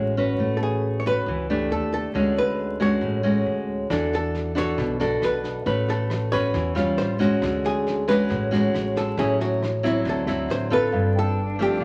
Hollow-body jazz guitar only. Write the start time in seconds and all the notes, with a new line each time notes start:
Already playing: F#4
0.57 A4
0.63 G#4
1.00 C#5
1.07 B4
1.72 A4
1.94 A4
2.38 B4
2.82 C#5
4.15 A4
4.58 C#5
5.25 B4
5.90 A4
6.32 C#5
6.98 C5
7.66 G#4
8.09 B4
8.97 A4
9.19 G#4
9.41 F#4
9.86 E4
10.09 A4
10.51 C5
10.73 B4
11.19 A4
11.62 G4